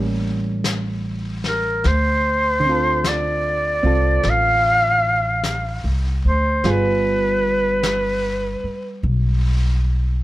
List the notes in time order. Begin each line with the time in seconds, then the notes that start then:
Already playing: A1 G3 A#3 C#4 G4
0.64 brush sweep, snare, hi-hat pedal
1.44 A#4, snare
1.84 D2 C5, brush sweep, snare
2.60 D3
2.66 C4 F4
2.71 A4
3.04 D5, brush sweep, snare, hi-hat pedal
3.83 C2 C4 F4 A4
4.23 A1, brush sweep, snare
4.30 F5
5.44 brush sweep, snare, hi-hat pedal
5.84 C2
6.25 D2 C5
6.64 G1 G3 B3 F4 G#4, brush sweep, snare
6.70 B4
7.83 brush sweep, snare, hi-hat pedal
8.64 muted upright bass stroke
9.03 B1, brush sweep